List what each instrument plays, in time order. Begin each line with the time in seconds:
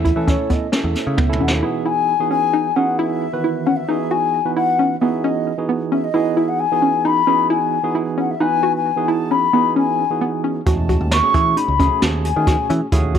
Already playing: picked electric bass E2, flute E5
0.05 synth arpeggio sound E4, kick, closed hi-hat
0.16 picked electric bass E3, tine electric piano A3 C#4 E4 A4
0.27 synth arpeggio sound C#4, flute C#5, kick, snare, closed hi-hat
0.50 synth arpeggio sound B3, flute D#5, kick, closed hi-hat
0.72 tine electric piano A3 C#4 E4 A4, synth arpeggio sound C#4, flute E5, snare, closed hi-hat
0.84 picked electric bass E2
0.95 snare, closed hi-hat
1.07 picked electric bass C#3
1.17 picked electric bass C#2, synth arpeggio sound B3, kick, high tom
1.29 tine electric piano A3 C#4 E4 A4
1.33 mid tom
1.40 picked electric bass D#2, synth arpeggio sound C#4, flute F#5
1.48 snare
1.52 flute E5
1.63 tine electric piano E3 B3 D#4 F#4 G#4, synth arpeggio sound E4
1.86 synth arpeggio sound E4, flute G#5
2.19 tine electric piano E3 B3 D#4 F#4 G#4
2.30 synth arpeggio sound C#4, flute G#5
2.53 synth arpeggio sound D#4
2.75 tine electric piano E3 B3 D#4 F#4 G#4, synth arpeggio sound C#4, flute F#5
2.98 synth arpeggio sound E4, flute E5
3.33 tine electric piano D#3 E3 B3 F#4 B4
3.44 synth arpeggio sound E4
3.66 synth arpeggio sound C#4, flute F#5
3.76 flute E5
3.89 tine electric piano E3 B3 D#4 F#4 G#4, synth arpeggio sound D#4
4.11 synth arpeggio sound F#4, flute G#5
4.45 tine electric piano E3 B3 D#4 F#4 B4
4.55 synth arpeggio sound E4, flute F#5
4.79 synth arpeggio sound C#4
5.00 tine electric piano E3 B3 D#4 F#4 G#4, synth arpeggio sound B3, flute E5
5.23 synth arpeggio sound C#4, flute D#5
5.58 tine electric piano E3 B3 D#4 F#4 G#4
5.69 synth arpeggio sound B3
5.92 synth arpeggio sound C#4, flute E5
6.04 flute D#5
6.14 tine electric piano E3 B3 D#4 F#4 G#4, synth arpeggio sound E4
6.37 synth arpeggio sound E4, flute E5
6.48 flute F#5
6.59 flute G#5
6.72 tine electric piano E3 B3 D#4 F#4 G#4
6.82 synth arpeggio sound C#4
7.05 synth arpeggio sound D#4, flute B5
7.27 tine electric piano E3 B3 D#4 F#4 G#4, synth arpeggio sound C#4
7.50 synth arpeggio sound E4, flute G#5
7.83 tine electric piano E3 B3 D#4 F#4 G#4
7.95 synth arpeggio sound E4
8.18 synth arpeggio sound C#4, flute F#5
8.30 flute E5
8.40 tine electric piano E3 B3 D#4 F#4 B4, synth arpeggio sound D#4, flute G#5
8.63 synth arpeggio sound F#4
8.76 flute G#5
8.96 tine electric piano E3 B3 D#4 F#4 G#4
9.08 synth arpeggio sound E4, flute A5
9.31 synth arpeggio sound C#4, flute B5
9.53 tine electric piano E3 B3 D#4 F#4 G#4, synth arpeggio sound B3
9.76 synth arpeggio sound C#4, flute G#5
10.10 tine electric piano E3 B3 D#4 F#4 G#4
10.21 synth arpeggio sound B3
10.44 synth arpeggio sound C#4
10.66 picked electric bass E2, tine electric piano G#3 A3 C#4 F#4, synth arpeggio sound F#4, flute A5, kick, closed hi-hat
10.89 synth arpeggio sound F#4, kick, closed hi-hat
11.01 picked electric bass D#2
11.11 flute C#6, snare, closed hi-hat
11.23 tine electric piano A3 C#4 F#4 G#4
11.34 picked electric bass E3, synth arpeggio sound C#4, kick, closed hi-hat
11.57 synth arpeggio sound D#4, flute B5, closed hi-hat
11.68 picked electric bass C#2
11.79 tine electric piano A3 C#4 F#4 G#4, synth arpeggio sound C#4, kick, closed hi-hat
12.02 picked electric bass D#2, synth arpeggio sound F#4, flute A5, snare, closed hi-hat
12.25 flute G#5, closed hi-hat
12.36 picked electric bass D#3, tine electric piano A3 C#4 F#4 G#4
12.47 synth arpeggio sound F#4, kick, snare, closed hi-hat
12.70 picked electric bass E3, synth arpeggio sound C#4, closed hi-hat
12.92 picked electric bass D#2, tine electric piano A3 C#4 F#4 G#4, synth arpeggio sound E4, kick, closed hi-hat
13.15 synth arpeggio sound F#4, kick, closed hi-hat